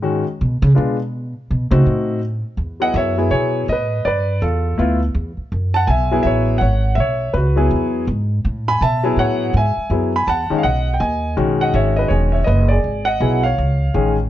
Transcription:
Already playing: G#2
0.02 D#3 G#3 C#4 F#4
0.41 B2
0.62 C#3
0.75 B2 G#3 B3 D4 F4
1.51 B2
1.71 C#3 A3 C4 D#4 F#4
1.86 A2
2.57 E2
2.80 F#3 B3 E4 G#4 D#5 F#5
2.94 F#2 C#5 E5
3.17 F#3 B3 E4 G#4
3.31 B2 G#4 C#5
3.68 A2 D#5
3.72 B4
4.05 G2 B4 D5
4.42 E2 F4 A4
4.78 D2 A3 B3 E4 F4
5.14 E2
5.37 muted upright bass stroke
5.52 F#2
5.74 F#5 A5
5.87 B1 E5 G#5
6.11 F#3 B3 E4 G#4
6.23 A1 C#5 E5
6.58 G#1 F#5
6.62 C#5
6.95 B1 E5
7.00 C#5
7.33 C#2 F#4 B4
7.56 F#3 B3 E4 G#4
7.71 E2
8.07 G#2
8.45 A2
8.68 G#5 B5
8.81 B2 E5 A5
9.04 F#3 B3 E4 G#4
9.17 A2 C#5 F#5
9.54 G#2 G#5
9.58 E5
9.77 muted upright bass stroke
9.90 F#2 F#3 B3 E4 G#4
10.16 G#5 B5
10.27 E2 F#5 A5
10.50 D#3 G#3 C#4 D#4, muted upright bass stroke
10.58 F5
10.63 B1 D#5 F#5
10.94 G5
11.00 D#2 D#5 G#5
11.37 B1 D#3 G#3 C#4 F#4
11.61 D#5 F#5
11.74 G#1 C#5 E5
11.96 B4 D#5
12.08 E1 G#4 C#5
12.32 C#5 E5
12.44 F#1 B4 D#5
12.68 G#4 D5
12.84 G#1
13.05 D#5 F#5
13.20 B1 F#3 B3 E4 G#4
13.43 C#5 F5
13.58 C#2
13.94 A1 D#3 G#3 C#4 G#4

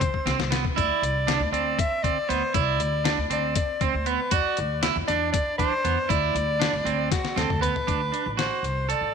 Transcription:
Already playing: C5
0.01 kick, closed hi-hat, high tom
0.14 kick
0.25 C2 C4, snare, closed hi-hat
0.39 C2, snare
0.51 B3, snare, closed hi-hat
0.65 kick
0.76 D2 E4 D5, kick, closed hi-hat
1.02 C2, closed hi-hat
1.27 D4, snare, closed hi-hat
1.40 D2
1.52 D2 C4 D5, closed hi-hat
1.79 E5, kick, closed hi-hat
2.03 D3 C4 D5, kick, closed hi-hat
2.29 D2 B3 C5, closed hi-hat
2.54 C2 E4 D5, kick, closed hi-hat
2.80 D2, closed hi-hat
3.04 D4, snare, closed hi-hat
3.18 D2
3.30 D2 C4 D5, closed hi-hat
3.55 D5, kick, closed hi-hat
3.81 D2 C4 C5, kick, closed hi-hat
3.94 D2
4.06 B3 B4, closed hi-hat
4.31 E2 F#4 D5, kick, closed hi-hat
4.57 D2, closed hi-hat
4.83 E4, snare, closed hi-hat
4.96 E2
5.08 E2 D4 D5, snare, closed hi-hat
5.33 D5, kick, closed hi-hat
5.58 E3 D4 C5, kick, closed hi-hat
5.84 E2 B3, closed hi-hat
6.09 D2 E4 D5, kick, closed hi-hat
6.35 D2, closed hi-hat
6.60 D4, snare, closed hi-hat
6.73 D2
6.85 D2 C4, closed hi-hat
7.11 F#4, kick, snare, closed hi-hat
7.25 snare
7.36 D2 C4 A4, snare, closed hi-hat
7.49 D2, mid tom
7.61 B3 B4, closed hi-hat, floor tom
7.76 floor tom
7.87 D2 D4, kick, closed hi-hat
8.12 D4, closed hi-hat
8.26 A1
8.37 F#4 C5, snare, closed hi-hat
8.63 C2, closed hi-hat
8.89 A4 D5, closed hi-hat
9.01 A1

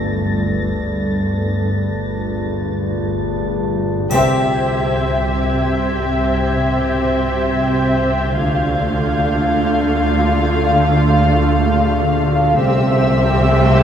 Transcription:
Already playing: G1 D2 G2 A4 B4 D5 A6 A#6
0.78 G1 G2
1.88 G1 D2 G2 F4
3.00 G1 G2
4.09 C2 C3 C4 G4 C5 E5 G6 G#6, triangle
8.36 D2 D3 A3 F4 A4 D5 F5
12.57 C2 C3 C4 G4 C5 E5 E6, riser
13.64 G6

